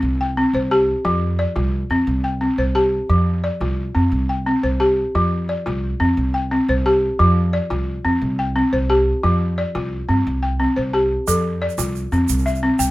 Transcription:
0.02 upright bass C2
0.21 balafon G5
0.37 balafon C4
0.53 upright bass C2, balafon C5
0.71 balafon G4 A5
1.05 upright bass F2, balafon F3 F4
1.39 balafon D5
1.56 upright bass C2, balafon F4
1.90 upright bass F2, balafon C4
2.07 upright bass C2
2.24 balafon G5
2.41 balafon C4
2.58 upright bass C2, balafon C5
2.75 balafon G4 A5
3.09 upright bass F2, balafon F3
3.44 balafon D5
3.61 upright bass C2, balafon F4
3.95 upright bass F2, balafon C4
4.12 upright bass C2
4.29 balafon G5
4.47 balafon C4
4.63 upright bass C2, balafon C5
4.80 balafon G4 A5
5.15 upright bass F2, balafon F3 F4
5.49 balafon D5
5.66 upright bass C2, balafon F4
6.00 upright bass F2, balafon C4
6.17 upright bass C2
6.34 balafon G5
6.51 balafon C4
6.69 upright bass C2, balafon C5
6.86 balafon G4 A5
7.19 upright bass F2, balafon F3 F4
7.53 balafon D5
7.70 upright bass C2, balafon F4
8.05 upright bass F2, balafon C4
8.22 upright bass C2
8.39 balafon G5
8.56 balafon C4
8.73 upright bass C2, balafon C5
8.90 balafon G4 A5
9.23 upright bass F2, balafon F3 F4
9.58 balafon D5
9.75 upright bass C2, balafon F4
10.09 upright bass G2, balafon C4
10.27 upright bass C2
10.43 balafon G5
10.60 balafon C4
10.76 upright bass C2, balafon C5
10.93 balafon G4 A5
11.28 upright bass F2, balafon F3 A4, shaker
11.62 balafon D5
11.70 shaker
11.78 upright bass C2, balafon F4, shaker
11.96 shaker
12.12 upright bass F2, balafon C4, shaker
12.29 upright bass C2, shaker
12.38 shaker
12.46 balafon E5, shaker
12.55 shaker
12.63 balafon C4
12.79 upright bass C2, balafon G5, shaker

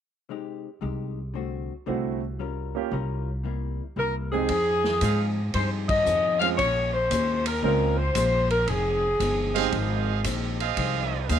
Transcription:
0.29 hollow-body jazz guitar C3 G#3 D#4 G4
0.81 upright bass C2, hollow-body jazz guitar C3 G#3 D#4 G4
1.34 hollow-body jazz guitar D3 A3 C4 F#4
1.86 upright bass C2, hollow-body jazz guitar D3 A3 C4 F#4, grand piano A3 C4 E4 F#4
2.39 hollow-body jazz guitar G3 C#4 F4 A#4
2.75 grand piano A#3 C#4 F4 G4
2.91 upright bass C2, hollow-body jazz guitar G3 C#4 F4 A#4
3.44 hollow-body jazz guitar C3 G3 A#3 E4
3.96 upright bass C2, hollow-body jazz guitar C3 G3 A#3 E4, saxophone section A#4
4.32 grand piano F2 G#3 C4 D#4 G4, saxophone section G#4
4.49 upright bass F2, hollow-body jazz guitar F3 C4 D#4 G#4, kick, ride
4.84 snare
5.01 upright bass G#2, hollow-body jazz guitar F3 C4 D#4 G#4, trumpet section G#4 C5 D#5 F5, kick, hi-hat pedal, ride
5.54 upright bass G2, hollow-body jazz guitar F3 C4 D#4 G#4, saxophone section C5, kick, ride
5.89 saxophone section D#5, kick, ride
6.06 upright bass F2, hollow-body jazz guitar F3 C4 D#4 G#4, hi-hat pedal
6.40 grand piano G#3 C4 C#4 F4, saxophone section F5, ride
6.58 upright bass A#1, hollow-body jazz guitar A#2 G#3 C#4 F4, saxophone section C#5, kick, ride
6.94 saxophone section C5
7.11 upright bass D#2, hollow-body jazz guitar A#2 G#3 C#4 F4, kick, hi-hat pedal, ride
7.46 saxophone section A#4, ride
7.62 upright bass C#2, hollow-body jazz guitar A#2 G#3 C#4 F4, grand piano G#3 C4 C#4 F4, saxophone section A#4, kick
7.97 saxophone section C5
8.15 upright bass A#1, hollow-body jazz guitar A#2 G#3 C#4 F4, kick, hi-hat pedal, ride
8.50 saxophone section A#4, ride
8.67 upright bass F1, hollow-body jazz guitar F2 D#3 G#3 C4, saxophone section G#4, kick, ride
9.19 upright bass G1, hollow-body jazz guitar F2 D#3 G#3 C4, kick, hi-hat pedal, ride
9.55 grand piano G#3 C4 D#4 G4, trumpet section G#4 C5 D#5 F5, ride
9.71 upright bass G#1, hollow-body jazz guitar F2 D#3 G#3 C4, kick, ride
10.24 upright bass A#1, hollow-body jazz guitar F2 D#3 G#3 C4, kick, hi-hat pedal, ride
10.60 trumpet section G#4 C5 D#5 F5, ride
10.77 upright bass C2, hollow-body jazz guitar F2 D#3 G#3 C4, kick, ride
11.28 upright bass D#2, hollow-body jazz guitar F2 D#3 G#3 C4, trumpet section G#4 C5 D#5 F5, kick, hi-hat pedal, ride

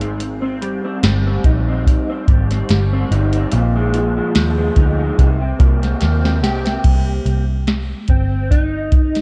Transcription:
Already playing: picked electric bass G#1, clean electric guitar G#2 D#3 D#4
0.01 clean electric guitar C4, closed hi-hat
0.20 closed hi-hat
0.42 clean electric guitar C4
0.61 clean electric guitar G3, closed hi-hat
0.85 clean electric guitar C4
1.03 picked electric bass G1, clean electric guitar G3, snare, closed hi-hat
1.27 clean electric guitar C4
1.44 picked electric bass A#1, clean electric guitar D#4, kick, closed hi-hat
1.68 clean electric guitar C4
1.87 kick, closed hi-hat
2.09 clean electric guitar C4
2.28 picked electric bass G#1, clean electric guitar G3, kick, closed hi-hat
2.51 clean electric guitar C4, snare, closed hi-hat
2.69 picked electric bass G1, clean electric guitar G3, snare, closed hi-hat
2.93 clean electric guitar C4
3.11 picked electric bass G1, clean electric guitar D#4, closed hi-hat
3.33 clean electric guitar C4, closed hi-hat
3.52 picked electric bass A#1, clean electric guitar A#2, closed hi-hat
3.76 clean electric guitar G#3
3.94 clean electric guitar F3, closed hi-hat
4.17 clean electric guitar G#3
4.35 picked electric bass D#2, clean electric guitar F3, snare, closed hi-hat
4.58 clean electric guitar G#3
4.76 picked electric bass D2, clean electric guitar D#4, kick, closed hi-hat
4.99 clean electric guitar G#3
5.19 picked electric bass C2, clean electric guitar C3, kick, closed hi-hat
5.41 clean electric guitar C4
5.59 picked electric bass C2, clean electric guitar A#3, kick, closed hi-hat
5.82 clean electric guitar C4, snare, closed hi-hat
6.01 picked electric bass D#2, clean electric guitar A#3, snare, closed hi-hat
6.24 clean electric guitar C4, snare
6.43 picked electric bass C2, clean electric guitar G4, snare, closed hi-hat
6.65 clean electric guitar C4, snare, closed hi-hat
6.84 picked electric bass C2, kick, closed hi-hat, crash
7.25 picked electric bass C2, closed hi-hat
7.67 snare, closed hi-hat
8.08 picked electric bass G1, clean electric guitar C4, kick, closed hi-hat
8.51 clean electric guitar D#4, kick, closed hi-hat
8.92 kick, closed hi-hat
9.15 snare, closed hi-hat

